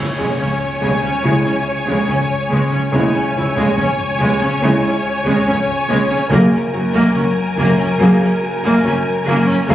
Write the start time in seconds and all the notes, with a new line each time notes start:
Already playing: C#2 C#3 C#5 G#5, impact
0.18 C#3 G#3, taiko
0.39 C#2 C#3 C#4, taiko low
0.81 C#2 C#3 G#3, taiko
1.03 C#3 C#4
1.23 C#2 C#3 G#3 E4, taiko
1.45 C#3 C#4
1.67 C#3
1.87 C#3 G#3, taiko
2.08 C#2 C#3 C#4, taiko low
2.50 C#2 C#3 G#3 C#4
2.71 C#3 C#4
2.92 C#2 C#3 G#3 E4 C#5 G#5, taiko
3.14 C#3 C#4
3.34 C#2 C#3 E4, taiko low
3.56 C#3 G#3, taiko
3.77 C#2 C#3 C#4, taiko low
4.20 C#2 C#3 G#3, taiko
4.41 C#3 C#4
4.62 C#2 C#3 G#3 E4, taiko
4.84 C#3 C#4
5.05 C#3
5.25 C#3 G#3, taiko
5.46 C#2 C#3 C#4, taiko low
5.88 C#2 C#3 G#3 C#4
6.09 C#3 C#4
6.30 F#1 F#2 A#3 A#4 G#5, taiko
6.34 G#4
6.51 F#2 C#4
6.72 F#1 F#2 F#4, taiko low
6.93 F#2 A#3, taiko
7.14 F#1 F#2 F#3 C#4, taiko low
7.56 F#1 F#2 A#3, taiko
7.78 F#2 C#4
7.99 F#1 F#2 A#3 G#4, taiko
8.21 F#2 C#4
8.43 F#2
8.63 F#2 A#3, taiko
8.84 F#1 F#2 C#4, taiko low
9.26 F#1 F#2 F#3 A#3
9.46 F#2 C#4
9.68 F#1 F#2 A#3 G#4 A#4 G#5, taiko